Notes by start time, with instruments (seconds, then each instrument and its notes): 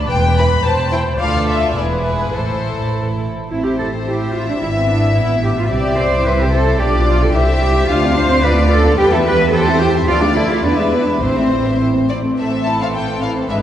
Already playing: viola section D5
0.10 double bass section E1, cello section E2, viola section B4, violin section G5
0.38 violin section E4 B4 B5
0.64 double bass section E1, cello section E2, viola section C5, violin section A5
0.91 violin section E4 C5 G5
1.19 cello section D2, double bass section D2, violin section F4 A4 F5, viola section D5
1.48 violin section E5
1.76 double bass section E1, cello section E2, violin section E4 G#4 D5, viola section B4
2.06 violin section B4
2.34 double bass section A1, cello section A2, violin section E4 A4 C5, viola section A4
3.50 double bass section A1, viola section C4 E4, cello section E4, violin section C5
3.65 cello section G4
3.79 cello section A4
4.06 viola section E4, cello section G4, violin section E5
4.34 cello section F4
4.49 cello section D4
4.62 double bass section G#1, viola section B3, cello section E4, violin section E5
4.77 cello section C4
4.89 cello section D4
5.17 double bass section A1, cello section E4, violin section E5
5.44 cello section G4
5.60 cello section F4
5.71 double bass section C2, viola section C4 E4, cello section G4, violin section D5
6.00 cello section C5
6.26 cello section B4, violin section C5
6.41 cello section G4
6.54 cello section A4
6.81 double bass section B1, viola section D4 F4, cello section G4, violin section D5
7.08 cello section F4
7.23 cello section A4
7.35 double bass section C2, viola section E4, cello section G4, violin section C5 E5
7.89 double bass section D2, viola section D4 F4, cello section F4, violin section C5 F5
8.03 viola section C4 D4, violin section D5
8.16 viola section D4 F4, cello section C5, violin section C5
8.29 viola section C4 D4, violin section D5
8.43 viola section D4 F4, cello section B4, violin section D5
8.57 viola section B3 D4, violin section F5
8.70 viola section D4 F4, cello section A4, violin section D5
8.84 viola section B3 D4, violin section F5
8.97 double bass section E2, viola section G3 G4, cello section G4, violin section B4 G5
9.12 viola section B3 E4, cello section A4, violin section E5
9.26 viola section G3 G4, cello section B4, violin section G5
9.39 viola section B3 E4, violin section E5
9.53 viola section E4 G4, cello section A4, violin section C5 G5
9.67 viola section C4 E4, violin section E5
9.80 viola section E4 G4, cello section G4, violin section G5
9.94 viola section C4 E4, violin section E5
10.08 double bass section D2, viola section F3 A4, cello section F4, violin section D5
10.21 viola section A3 F4, cello section D4, violin section F5
10.35 viola section F3 A4, cello section E4, violin section D5
10.49 viola section A3 F4, violin section F5
10.64 double bass section E2, viola section B3 E4, cello section D4, violin section B4 D5
10.77 viola section G#3 D4, violin section E5
10.93 cello section B3, viola section B3 E4, violin section D5
11.07 viola section G#3 D4, violin section E5
11.22 double bass section A1, cello section C4, viola section C4 E4, violin section C5
11.37 viola section A3 C4, violin section E5
11.50 viola section C4 E4, violin section C5
11.65 viola section A3 C4, violin section E5
11.79 viola section C4 E4, violin section C5
11.95 viola section A3 C4
12.09 viola section C4 E4, violin section D5
12.23 viola section A3 C4
12.38 double bass section A1, cello section A2, viola section E3 C4, violin section A3 A4 E5
12.52 violin section C4
12.65 violin section E4 A5
12.81 violin section C4 F5
12.94 violin section A3 G5
13.10 violin section C4
13.22 violin section E4 F5
13.37 violin section C4
13.50 double bass section G#1, cello section G#2, violin section G#3 B4 E5, viola section D4